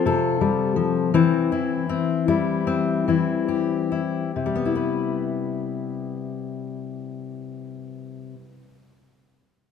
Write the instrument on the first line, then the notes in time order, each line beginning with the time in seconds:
steel-string acoustic guitar
Already playing: F3 C4 F4
0.06 C3 A4
0.41 G3
0.76 F3
1.14 E3 C4
1.52 E4
1.89 C4
2.28 G3 E4
2.67 C4
3.08 E3 E4
3.48 G4
3.92 E4
4.36 C3
4.46 G3
4.56 B3
4.65 E4
4.75 B4